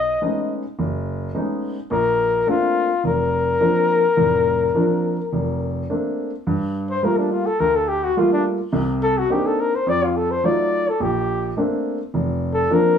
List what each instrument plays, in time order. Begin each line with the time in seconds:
Already playing: grand piano B1, flugelhorn D#5
0.22 grand piano G#3 A3 B3 C#4 D#4
0.79 grand piano F#1
1.35 grand piano G#3 A3 B3 C#4 D#4
1.91 grand piano A#1, flugelhorn A#4
2.47 grand piano A3 A#3 C4 D4, flugelhorn F4
3.04 grand piano F1, flugelhorn A#4
3.60 grand piano F3 A#3 C4 D4
4.17 grand piano F1 A2
4.75 grand piano F3 A#3 C4 D4
5.33 grand piano F1
5.90 grand piano A3 A#3 C4 D4
6.47 grand piano G2
6.90 flugelhorn C5
7.03 grand piano G3 A3 A#3 F4, flugelhorn A#4
7.18 flugelhorn D4
7.32 flugelhorn F4
7.46 flugelhorn A4
7.60 grand piano D2, flugelhorn A#4
7.75 flugelhorn A4
7.88 flugelhorn G4
8.04 flugelhorn F#4
8.17 grand piano G3 A3 A#3 F4, flugelhorn F4
8.33 flugelhorn D4
8.72 grand piano C2 C3
9.03 flugelhorn A4
9.18 flugelhorn F#4
9.30 grand piano A#3 C4 D4 D#4, flugelhorn G4
9.47 flugelhorn A4
9.60 flugelhorn A#4
9.75 flugelhorn C5
9.87 grand piano F2, flugelhorn D5
10.04 flugelhorn F4
10.17 flugelhorn A4
10.31 flugelhorn C5
10.44 grand piano F#3 A3 D#4 F4, flugelhorn D5
10.89 flugelhorn A4
11.00 grand piano A#1, flugelhorn G4
11.57 grand piano A3 A#3 C4 D4
12.14 grand piano F1
12.54 flugelhorn A4
12.70 grand piano F3 A#3 C4 D4, flugelhorn A#4